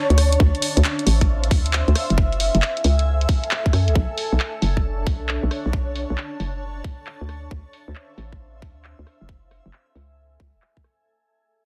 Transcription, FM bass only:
0, 0, Header, 1, 2, 480
1, 0, Start_track
1, 0, Tempo, 444444
1, 431, Time_signature, 4, 2, 24, 8
1, 12582, End_track
2, 0, Start_track
2, 0, Title_t, "FM bass"
2, 0, Program_c, 0, 39
2, 110, Note_on_c, 0, 38, 83
2, 402, Note_off_c, 0, 38, 0
2, 432, Note_on_c, 0, 38, 99
2, 556, Note_off_c, 0, 38, 0
2, 831, Note_on_c, 0, 38, 87
2, 894, Note_off_c, 0, 38, 0
2, 1151, Note_on_c, 0, 33, 86
2, 1631, Note_on_c, 0, 38, 87
2, 1647, Note_off_c, 0, 33, 0
2, 1974, Note_off_c, 0, 38, 0
2, 2030, Note_on_c, 0, 38, 78
2, 2093, Note_off_c, 0, 38, 0
2, 2271, Note_on_c, 0, 30, 83
2, 2695, Note_off_c, 0, 30, 0
2, 2750, Note_on_c, 0, 30, 83
2, 2813, Note_off_c, 0, 30, 0
2, 3073, Note_on_c, 0, 37, 84
2, 3524, Note_off_c, 0, 37, 0
2, 4031, Note_on_c, 0, 42, 84
2, 4191, Note_on_c, 0, 37, 100
2, 4207, Note_off_c, 0, 42, 0
2, 4253, Note_off_c, 0, 37, 0
2, 4271, Note_on_c, 0, 35, 94
2, 4395, Note_off_c, 0, 35, 0
2, 4671, Note_on_c, 0, 35, 82
2, 4734, Note_off_c, 0, 35, 0
2, 4992, Note_on_c, 0, 30, 85
2, 5472, Note_on_c, 0, 35, 88
2, 5488, Note_off_c, 0, 30, 0
2, 5815, Note_off_c, 0, 35, 0
2, 5869, Note_on_c, 0, 35, 79
2, 5933, Note_off_c, 0, 35, 0
2, 6111, Note_on_c, 0, 35, 81
2, 6535, Note_off_c, 0, 35, 0
2, 6591, Note_on_c, 0, 35, 85
2, 6654, Note_off_c, 0, 35, 0
2, 6911, Note_on_c, 0, 30, 83
2, 7363, Note_off_c, 0, 30, 0
2, 7791, Note_on_c, 0, 38, 81
2, 8083, Note_off_c, 0, 38, 0
2, 8113, Note_on_c, 0, 38, 92
2, 8236, Note_off_c, 0, 38, 0
2, 8511, Note_on_c, 0, 38, 85
2, 8574, Note_off_c, 0, 38, 0
2, 8831, Note_on_c, 0, 33, 84
2, 9312, Note_on_c, 0, 38, 88
2, 9329, Note_off_c, 0, 33, 0
2, 9655, Note_off_c, 0, 38, 0
2, 9710, Note_on_c, 0, 38, 80
2, 9773, Note_off_c, 0, 38, 0
2, 9951, Note_on_c, 0, 30, 77
2, 10375, Note_off_c, 0, 30, 0
2, 10430, Note_on_c, 0, 30, 82
2, 10493, Note_off_c, 0, 30, 0
2, 10751, Note_on_c, 0, 37, 86
2, 11203, Note_off_c, 0, 37, 0
2, 11231, Note_on_c, 0, 37, 91
2, 11389, Note_on_c, 0, 28, 85
2, 11405, Note_off_c, 0, 37, 0
2, 11453, Note_off_c, 0, 28, 0
2, 12582, End_track
0, 0, End_of_file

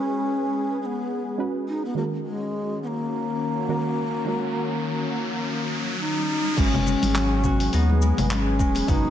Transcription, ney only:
0, 0, Header, 1, 2, 480
1, 0, Start_track
1, 0, Key_signature, 5, "minor"
1, 0, Tempo, 576923
1, 1632, Time_signature, 4, 2, 24, 8
1, 7571, End_track
2, 0, Start_track
2, 0, Title_t, "Ney"
2, 0, Program_c, 0, 77
2, 0, Note_on_c, 0, 61, 103
2, 673, Note_off_c, 0, 61, 0
2, 682, Note_on_c, 0, 61, 67
2, 714, Note_on_c, 0, 59, 73
2, 722, Note_off_c, 0, 61, 0
2, 1141, Note_off_c, 0, 59, 0
2, 1400, Note_on_c, 0, 63, 88
2, 1521, Note_off_c, 0, 63, 0
2, 1539, Note_on_c, 0, 59, 86
2, 1632, Note_off_c, 0, 59, 0
2, 1641, Note_on_c, 0, 58, 90
2, 1694, Note_off_c, 0, 58, 0
2, 1880, Note_on_c, 0, 56, 89
2, 2322, Note_off_c, 0, 56, 0
2, 2352, Note_on_c, 0, 59, 89
2, 2389, Note_on_c, 0, 58, 97
2, 2398, Note_off_c, 0, 59, 0
2, 4959, Note_off_c, 0, 58, 0
2, 4991, Note_on_c, 0, 63, 101
2, 5475, Note_on_c, 0, 61, 120
2, 5487, Note_off_c, 0, 63, 0
2, 6436, Note_on_c, 0, 59, 102
2, 6449, Note_off_c, 0, 61, 0
2, 6910, Note_off_c, 0, 59, 0
2, 6915, Note_on_c, 0, 61, 103
2, 7396, Note_on_c, 0, 63, 122
2, 7409, Note_off_c, 0, 61, 0
2, 7571, Note_off_c, 0, 63, 0
2, 7571, End_track
0, 0, End_of_file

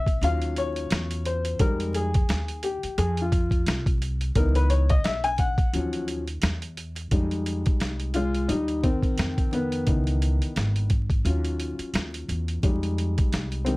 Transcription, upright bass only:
0, 0, Header, 1, 3, 480
1, 0, Start_track
1, 0, Tempo, 689655
1, 1114, Time_signature, 4, 2, 24, 8
1, 9583, End_track
2, 0, Start_track
2, 0, Title_t, "Upright bass"
2, 0, Program_c, 0, 32
2, 0, Note_on_c, 0, 35, 76
2, 130, Note_off_c, 0, 35, 0
2, 149, Note_on_c, 0, 39, 106
2, 607, Note_off_c, 0, 39, 0
2, 632, Note_on_c, 0, 40, 90
2, 1089, Note_off_c, 0, 40, 0
2, 1111, Note_on_c, 0, 41, 108
2, 1569, Note_off_c, 0, 41, 0
2, 1592, Note_on_c, 0, 39, 73
2, 1952, Note_off_c, 0, 39, 0
2, 2074, Note_on_c, 0, 41, 119
2, 2530, Note_off_c, 0, 41, 0
2, 2551, Note_on_c, 0, 36, 85
2, 3009, Note_off_c, 0, 36, 0
2, 3031, Note_on_c, 0, 37, 114
2, 3488, Note_off_c, 0, 37, 0
2, 3512, Note_on_c, 0, 35, 80
2, 3872, Note_off_c, 0, 35, 0
2, 3989, Note_on_c, 0, 39, 98
2, 4448, Note_off_c, 0, 39, 0
2, 4472, Note_on_c, 0, 40, 88
2, 4929, Note_off_c, 0, 40, 0
2, 4951, Note_on_c, 0, 41, 103
2, 5312, Note_off_c, 0, 41, 0
2, 5430, Note_on_c, 0, 36, 68
2, 5888, Note_off_c, 0, 36, 0
2, 5910, Note_on_c, 0, 39, 96
2, 6271, Note_off_c, 0, 39, 0
2, 6387, Note_on_c, 0, 41, 78
2, 6847, Note_off_c, 0, 41, 0
2, 6869, Note_on_c, 0, 37, 104
2, 7231, Note_off_c, 0, 37, 0
2, 7352, Note_on_c, 0, 32, 82
2, 7809, Note_off_c, 0, 32, 0
2, 7827, Note_on_c, 0, 39, 103
2, 8190, Note_off_c, 0, 39, 0
2, 8307, Note_on_c, 0, 39, 85
2, 8538, Note_off_c, 0, 39, 0
2, 8550, Note_on_c, 0, 40, 87
2, 8780, Note_off_c, 0, 40, 0
2, 8791, Note_on_c, 0, 41, 103
2, 9152, Note_off_c, 0, 41, 0
2, 9272, Note_on_c, 0, 36, 78
2, 9583, Note_off_c, 0, 36, 0
2, 9583, End_track
3, 0, Start_track
3, 0, Title_t, "Muted upright bass strokes"
3, 1972, Note_on_c, 9, 29, 43
3, 2042, Note_off_c, 9, 29, 0
3, 5336, Note_on_c, 9, 29, 47
3, 5405, Note_off_c, 9, 29, 0
3, 6280, Note_on_c, 9, 29, 38
3, 6349, Note_off_c, 9, 29, 0
3, 7248, Note_on_c, 9, 29, 50
3, 7317, Note_off_c, 9, 29, 0
3, 8206, Note_on_c, 9, 29, 40
3, 8276, Note_off_c, 9, 29, 0
3, 9176, Note_on_c, 9, 29, 47
3, 9246, Note_off_c, 9, 29, 0
3, 9583, End_track
0, 0, End_of_file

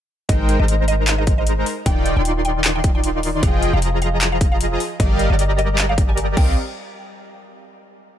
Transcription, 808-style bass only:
0, 0, Header, 1, 2, 480
1, 0, Start_track
1, 0, Tempo, 392157
1, 357, Time_signature, 4, 2, 24, 8
1, 10020, End_track
2, 0, Start_track
2, 0, Title_t, "808-style bass"
2, 0, Program_c, 0, 38
2, 356, Note_on_c, 0, 32, 93
2, 703, Note_off_c, 0, 32, 0
2, 730, Note_on_c, 0, 32, 91
2, 2003, Note_off_c, 0, 32, 0
2, 2277, Note_on_c, 0, 27, 97
2, 2623, Note_off_c, 0, 27, 0
2, 2650, Note_on_c, 0, 27, 92
2, 4176, Note_off_c, 0, 27, 0
2, 4197, Note_on_c, 0, 29, 97
2, 4543, Note_off_c, 0, 29, 0
2, 4570, Note_on_c, 0, 29, 98
2, 5843, Note_off_c, 0, 29, 0
2, 6117, Note_on_c, 0, 31, 102
2, 6464, Note_off_c, 0, 31, 0
2, 6489, Note_on_c, 0, 31, 93
2, 7790, Note_off_c, 0, 31, 0
2, 7797, Note_on_c, 0, 36, 94
2, 8020, Note_off_c, 0, 36, 0
2, 10020, End_track
0, 0, End_of_file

